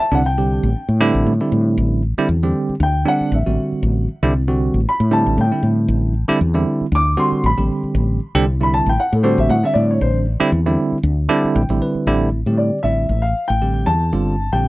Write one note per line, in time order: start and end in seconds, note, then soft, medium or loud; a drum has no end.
0.00 0.12 A5 loud
0.12 0.58 C2 medium
0.12 0.21 D3 medium
0.12 0.21 G3 medium
0.12 0.21 C4 medium
0.12 0.21 D4 loud
0.12 0.25 F#5 medium
0.24 0.31 C4 soft
0.24 0.31 E4 soft
0.24 0.98 G5 medium
0.38 0.68 D3 medium
0.38 0.69 G3 medium
0.38 0.68 C4 medium
0.38 0.68 G4 medium
0.63 0.74 A1 medium
0.75 0.82 C4 soft
0.75 0.82 D4 soft
0.89 1.12 A2 medium
1.01 1.32 D3 loud
1.01 1.32 G3 loud
1.01 1.32 C4 loud
1.01 1.32 E4 loud
1.14 1.25 A1 medium
1.26 1.39 A2 loud
1.41 2.02 D3 medium
1.41 2.02 G3 medium
1.41 2.02 C4 medium
1.41 2.02 E4 medium
1.52 1.75 A2 medium
1.78 2.13 A1 loud
2.18 2.27 D3 loud
2.18 2.27 G3 loud
2.18 2.27 C4 medium
2.18 2.28 E4 loud
2.29 2.52 E2 medium
2.29 2.36 C4 soft
2.29 2.37 F#4 soft
2.43 2.74 D3 medium
2.43 2.74 G3 medium
2.43 2.74 C4 medium
2.43 2.74 G4 loud
2.69 muted fretless electric bass stroke soft
2.80 3.03 D2 loud
2.80 3.07 G5 medium
3.05 3.38 D3 medium
3.05 3.38 G3 medium
3.05 3.38 C4 medium
3.05 3.38 D4 loud
3.05 3.32 F#5 loud
3.21 muted fretless electric bass stroke soft
3.32 3.45 A1 loud
3.32 3.58 E5 medium
3.46 3.57 A1 medium
3.46 4.07 D3 medium
3.46 4.07 G3 medium
3.46 4.07 C4 medium
3.46 4.07 F#4 medium
3.72 muted fretless electric bass stroke soft
3.83 4.06 A1 loud
4.23 4.69 C2 medium
4.23 4.33 D3 loud
4.23 4.33 G3 loud
4.23 4.33 C4 medium
4.23 4.33 E4 loud
4.35 4.42 C4 soft
4.35 4.42 D4 soft
4.48 4.79 D3 medium
4.48 4.79 G3 medium
4.48 4.79 C4 medium
4.48 4.79 F#4 loud
4.74 4.85 A1 medium
4.86 4.93 C4 soft
4.86 4.93 F#4 soft
4.86 5.13 B5 medium
5.00 5.23 A2 medium
5.11 5.43 D3 loud
5.11 5.43 G3 medium
5.11 5.43 C4 medium
5.11 5.43 E4 loud
5.11 5.38 A5 medium
5.26 5.37 A1 medium
5.38 5.50 A2 loud
5.38 5.64 G5 medium
5.52 6.13 D3 medium
5.52 6.13 G3 medium
5.52 6.13 C4 medium
5.52 6.13 E4 medium
5.63 5.86 A2 medium
5.88 6.24 A1 loud
6.28 6.38 D3 loud
6.28 6.38 G3 loud
6.28 6.38 C4 loud
6.28 6.38 E4 loud
6.28 muted fretless electric bass stroke soft
6.41 6.64 E2 medium
6.41 6.48 C4 soft
6.41 6.48 F#4 soft
6.54 6.85 D3 loud
6.54 6.85 G3 medium
6.54 6.85 C4 medium
6.54 6.85 E4 loud
6.81 muted fretless electric bass stroke soft
6.92 7.15 D2 loud
6.92 6.99 C4 soft
6.92 6.99 E4 soft
6.92 7.19 D6 loud
7.17 7.49 D3 loud
7.17 7.50 G3 medium
7.17 7.49 C4 medium
7.17 7.49 F#4 loud
7.17 7.44 C6 medium
7.32 muted fretless electric bass stroke soft
7.44 7.56 A1 loud
7.44 7.61 B5 medium
7.58 7.68 A1 medium
7.58 8.19 D3 medium
7.58 8.19 G3 medium
7.58 8.19 C4 medium
7.58 8.19 G4 medium
7.83 muted fretless electric bass stroke soft
7.95 8.18 A1 loud
8.35 8.81 C2 medium
8.35 8.44 D3 loud
8.35 8.45 G3 loud
8.35 8.45 C4 loud
8.35 8.44 G4 loud
8.46 8.54 C4 soft
8.46 8.53 E4 soft
8.61 8.91 D3 medium
8.61 8.91 G3 medium
8.61 8.91 C4 medium
8.61 8.91 E4 medium
8.61 8.73 B5 medium
8.74 8.87 A5 loud
8.86 8.97 A1 medium
8.86 8.99 G5 medium
8.99 9.05 C4 soft
8.99 9.05 E4 soft
8.99 9.13 F#5 medium
9.13 9.35 A2 loud
9.13 9.24 A4 medium
9.23 9.55 D3 loud
9.23 9.55 G3 medium
9.23 9.55 C4 medium
9.23 9.55 F#4 loud
9.23 9.37 C5 medium
9.38 9.48 A1 medium
9.38 9.50 E5 medium
9.49 9.62 A2 loud
9.49 9.64 F#5 medium
9.63 10.25 D3 medium
9.63 10.24 G3 medium
9.63 10.25 C4 medium
9.63 10.25 D4 medium
9.63 9.76 E5 loud
9.74 9.98 A2 medium
9.74 9.88 D5 medium
9.91 10.01 C#5 medium
10.01 10.37 A1 loud
10.01 10.17 C5 medium
10.40 10.50 D3 loud
10.40 10.50 G3 loud
10.40 10.50 C4 loud
10.40 10.50 E4 loud
10.40 muted fretless electric bass stroke soft
10.52 10.75 E2 medium
10.52 10.59 C4 soft
10.52 10.59 E4 soft
10.66 10.97 D3 loud
10.66 10.97 G3 medium
10.66 10.97 C4 loud
10.66 10.97 E4 loud
10.92 muted fretless electric bass stroke soft
11.03 11.27 D2 loud
11.03 11.11 C4 soft
11.03 11.11 D4 soft
11.29 11.61 D3 loud
11.29 11.61 G3 loud
11.29 11.61 C4 loud
11.29 11.61 E4 loud
11.29 11.54 A5 medium
11.44 muted fretless electric bass stroke soft
11.56 11.68 A1 loud
11.56 11.80 G5 medium
11.69 11.80 A1 medium
11.69 12.06 D3 medium
11.69 12.06 G3 medium
11.69 12.06 C4 medium
11.69 12.06 E4 medium
11.82 12.06 B4 medium
11.95 muted fretless electric bass stroke soft
12.07 12.42 A1 medium
12.07 12.28 D3 loud
12.07 12.28 G3 medium
12.07 12.28 C4 medium
12.07 12.28 E4 loud
12.32 12.39 C4 soft
12.32 12.40 E4 soft
12.46 12.70 A2 medium
12.46 12.78 D3 medium
12.46 12.78 G3 medium
12.46 12.78 C4 medium
12.46 12.78 G4 medium
12.58 12.85 D5 medium
12.83 13.07 A1 medium
12.83 13.06 D3 medium
12.83 13.06 G3 medium
12.83 13.06 C4 medium
12.83 13.06 E4 medium
12.83 13.25 E5 medium
13.09 13.33 A1 medium
13.22 13.47 F5 medium
13.48 13.83 A1 medium
13.48 13.88 G5 medium
13.62 13.93 D3 medium
13.62 13.93 G3 medium
13.62 13.93 C4 medium
13.62 13.93 G4 medium
13.86 14.10 E2 medium
13.86 14.55 A5 loud
14.02 14.07 C4 soft
14.02 14.07 E4 soft
14.13 14.49 G1 medium
14.13 14.34 D3 medium
14.13 14.34 G3 medium
14.13 14.35 C4 medium
14.13 14.34 F4 medium
14.39 14.46 C4 soft
14.39 14.46 D4 soft
14.53 14.68 A#1 medium
14.53 14.68 D3 medium
14.53 14.68 G3 medium
14.53 14.68 C4 medium
14.53 14.68 G4 medium
14.53 14.68 G5 medium